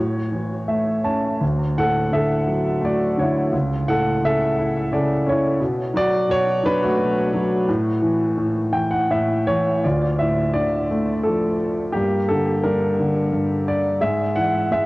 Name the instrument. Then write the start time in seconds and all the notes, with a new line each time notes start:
grand piano
Already playing: A2 F#4 C#5
0.32 E3
0.68 A3 E5
1.04 C#4 A5
1.41 D2
1.78 A2 A4 F#5
2.12 D3 A4 E5
2.47 F#3
2.81 A3 D5
2.87 F#4
3.18 D3 C#5
3.22 E4
3.52 C#2
3.88 A2 A4 F#5
4.23 C#3 A4 E5
4.58 E4
4.92 C#3 A4 D5
5.26 C#4 C#5
5.31 E4
5.60 B2
5.94 F#3 F#4 D5
6.29 B2 F#4 C#5
6.64 F#3 D4 B4
6.83 A3 F#4
6.98 B2
7.34 F#3
7.69 A2
8.02 E3
8.38 A2
8.72 E3 G5
8.91 F#5
9.10 A2 E5
9.47 E3 C#5
9.84 D2 F4 D5
10.19 A2 E5
10.54 D3 D5
10.91 A3
11.23 F3 A4
11.92 G2 A#3 G4
12.29 D3 A4
12.64 G2 D4 A#4
13.00 D3
13.33 G2
13.68 D5
14.01 G#2 G#4 E5
14.36 E3 F#5
14.71 G#3 E5